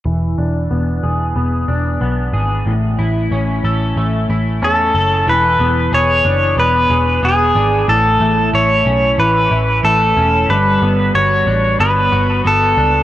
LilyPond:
<<
  \new Staff \with { instrumentName = "Pedal steel guitar" } { \time 4/4 \key e \mixolydian \tempo 4 = 92 r1 | r2. a'4 | b'4 cis''4 b'4 gis'4 | a'4 cis''4 b'4 a'4 |
b'4 cis''4 b'4 a'4 | }
  \new Staff \with { instrumentName = "Clean electric guitar" } { \time 4/4 \key e \mixolydian e8 d'8 b8 gis'8 b8 d'8 b8 gis'8 | a,8 e'8 cis'8 a'8 a8 e'8 cis'8 a'8 | e8 b8 gis'8 d'8 b8 gis'8 b8 d'8 | a,8 a8 e'8 cis'8 e8 e'8 a8 cis'8 |
g8 b8 fis'8 d'8 b8 fis'8 b8 d'8 | }
  \new Staff \with { instrumentName = "Picked electric bass" } { \clef bass \time 4/4 \key e \mixolydian e,,8 e,,8 e,,8 e,,8 e,,8 e,,8 b,,8 gis,,8 | a,,8 a,,8 a,,8 a,,8 a,,8 a,,8 e,8 fis,,8 | e,,8 e,,8 e,,8 fis,,8 e,,8 e,,8 e,,8 gis,,8 | a,,8 a,,8 a,,8 b,,8 a,,8 a,,8 a,,8 e,,8 |
g,,8 g,,8 g,,8 a,,8 g,,8 g,,8 g,,8 cis,8 | }
>>